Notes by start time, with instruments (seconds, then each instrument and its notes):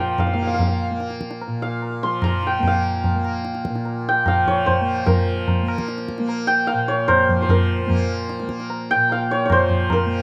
Already playing: tanpura A#2 F3 A#3, santur F5 A#5 C6
0.00 santur G5
0.18 santur F5, tabla tin, tabla ge
0.27 santur F5
0.33 tanpura A#3, santur F5
0.42 santur F5
0.47 santur F5
0.54 santur F5
0.59 santur F5, tabla tin, tabla ge
0.68 santur F5
0.91 tanpura A#3
1.00 tabla te
1.10 tabla te
1.21 tabla ke
1.31 tabla te
1.42 tabla tin
1.47 tanpura A#2
1.62 santur F5
1.82 tabla tin
2.03 tanpura F3, santur C6
2.22 santur A#5, tabla na, tabla ge
2.43 santur G5, tabla te
2.59 tanpura A#3, tabla tin, tabla ge
2.67 santur F5
3.04 tabla tin, tabla ge
3.15 tanpura A#3
3.25 tabla na
3.45 tabla te
3.55 tabla te
3.65 tabla ke
3.70 tanpura A#2
3.75 tabla te
3.85 tabla tin
4.09 santur G5
4.26 tanpura F3, santur F5, tabla na, tabla ge
4.46 santur C#5, tabla ge
4.66 santur C5, tabla tin, tabla ge
4.81 tanpura A#3
5.06 tanpura F3, santur A#4, tabla tin, tabla ge
5.48 tabla tin, tabla ge
5.62 tanpura A#3
5.68 tabla na
5.78 tabla ke
5.88 tabla te
5.98 tabla te
6.09 tabla ke
6.18 tanpura A#3, tabla te
6.29 tabla tin
6.47 santur G5
6.67 santur F5, tabla tin
6.74 tanpura A#2
6.88 santur C#5
7.08 santur C5, tabla na, tabla ge
7.29 tanpura F3, tabla ge
7.42 santur C5
7.49 santur A#4, tabla tin, tabla ge
7.87 tanpura A#3, tabla tin, tabla ge
8.29 tabla te
8.39 tanpura A#3, tabla te
8.49 tabla ke
8.60 tabla te
8.70 tabla tin
8.91 santur G5
8.95 tanpura A#2
9.10 santur F5, tabla tin
9.31 santur C#5
9.45 santur C#5
9.50 tanpura F3, santur C5, tabla na, tabla ge
9.70 tabla ge
9.90 santur A#4, tabla tin, tabla ge
10.06 tanpura A#3